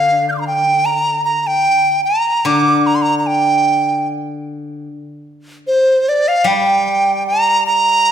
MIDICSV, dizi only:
0, 0, Header, 1, 2, 480
1, 0, Start_track
1, 0, Tempo, 804290
1, 1470, Time_signature, 4, 2, 24, 8
1, 4844, End_track
2, 0, Start_track
2, 0, Title_t, "Dizi"
2, 0, Program_c, 0, 73
2, 0, Note_on_c, 0, 77, 76
2, 169, Note_off_c, 0, 77, 0
2, 172, Note_on_c, 0, 91, 33
2, 185, Note_off_c, 0, 91, 0
2, 188, Note_on_c, 0, 89, 33
2, 200, Note_off_c, 0, 89, 0
2, 200, Note_on_c, 0, 86, 41
2, 217, Note_off_c, 0, 86, 0
2, 221, Note_on_c, 0, 84, 46
2, 240, Note_off_c, 0, 84, 0
2, 244, Note_on_c, 0, 82, 47
2, 278, Note_off_c, 0, 82, 0
2, 281, Note_on_c, 0, 79, 70
2, 510, Note_on_c, 0, 82, 78
2, 519, Note_off_c, 0, 79, 0
2, 740, Note_off_c, 0, 82, 0
2, 744, Note_on_c, 0, 82, 71
2, 877, Note_on_c, 0, 79, 84
2, 886, Note_off_c, 0, 82, 0
2, 1217, Note_off_c, 0, 79, 0
2, 1220, Note_on_c, 0, 82, 79
2, 1469, Note_on_c, 0, 86, 87
2, 1478, Note_off_c, 0, 82, 0
2, 1710, Note_on_c, 0, 82, 74
2, 1719, Note_off_c, 0, 86, 0
2, 1761, Note_on_c, 0, 84, 68
2, 1770, Note_off_c, 0, 82, 0
2, 1802, Note_on_c, 0, 82, 79
2, 1811, Note_off_c, 0, 84, 0
2, 1898, Note_off_c, 0, 82, 0
2, 1902, Note_on_c, 0, 82, 53
2, 1954, Note_on_c, 0, 79, 78
2, 1963, Note_off_c, 0, 82, 0
2, 2432, Note_off_c, 0, 79, 0
2, 3385, Note_on_c, 0, 72, 75
2, 3633, Note_on_c, 0, 74, 71
2, 3642, Note_off_c, 0, 72, 0
2, 3748, Note_on_c, 0, 77, 77
2, 3757, Note_off_c, 0, 74, 0
2, 3865, Note_on_c, 0, 79, 75
2, 3874, Note_off_c, 0, 77, 0
2, 4334, Note_off_c, 0, 79, 0
2, 4338, Note_on_c, 0, 82, 93
2, 4560, Note_off_c, 0, 82, 0
2, 4572, Note_on_c, 0, 82, 99
2, 4844, Note_off_c, 0, 82, 0
2, 4844, End_track
0, 0, End_of_file